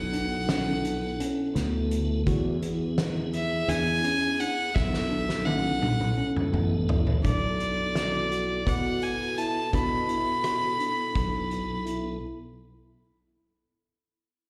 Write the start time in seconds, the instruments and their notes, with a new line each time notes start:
Already playing: fretless electric bass B1, tonewheel organ B3 E4 A4, violin F#5
0.13 tine electric piano D4, closed hi-hat
0.49 tine electric piano C#4, snare, closed hi-hat
0.84 tine electric piano D4, closed hi-hat
1.20 tine electric piano C#4, closed hi-hat
1.55 fretless electric bass D2, tine electric piano B3, snare, closed hi-hat
1.91 closed hi-hat
2.24 fretless electric bass E2, tonewheel organ B3 E4, tine electric piano F#4, kick, closed hi-hat
2.28 tonewheel organ G#4
2.62 tine electric piano B3, closed hi-hat
2.98 tine electric piano B3, snare, closed hi-hat
3.33 violin E5, closed hi-hat
3.68 fretless electric bass E2, tine electric piano D4, violin G#5, snare, closed hi-hat
4.04 tine electric piano C#4, closed hi-hat
4.40 tine electric piano D4, violin F#5, closed hi-hat
4.73 fretless electric bass B1, tonewheel organ B3 E4, violin E5, kick, snare
4.78 tonewheel organ A4
4.94 snare
5.11 tine electric piano D4
5.29 snare
5.45 tine electric piano C#4, violin F#5, high tom
5.81 tine electric piano D4, mid tom
6.01 mid tom
6.17 tine electric piano C#4
6.37 mid tom
6.53 fretless electric bass A1, tine electric piano B3, mid tom
6.89 floor tom
7.07 floor tom
7.23 fretless electric bass B1, tonewheel organ B3 E4 A4, tine electric piano D4, violin D5, kick, closed hi-hat
7.60 closed hi-hat
7.95 tine electric piano F#4, snare, closed hi-hat
8.31 tine electric piano F#4, closed hi-hat
8.66 fretless electric bass B2, tine electric piano F#4, violin F#5, kick, closed hi-hat
9.02 violin G#5, closed hi-hat
9.38 tine electric piano E4, violin A5, closed hi-hat
9.73 fretless electric bass B2, tine electric piano D4, violin B5, kick, closed hi-hat
10.09 tine electric piano E4, closed hi-hat
10.44 tine electric piano F#4, cross-stick, closed hi-hat
10.79 tine electric piano D4, closed hi-hat
11.15 fretless electric bass B1, tine electric piano D4, kick, closed hi-hat
11.51 closed hi-hat
11.85 tine electric piano E4, closed hi-hat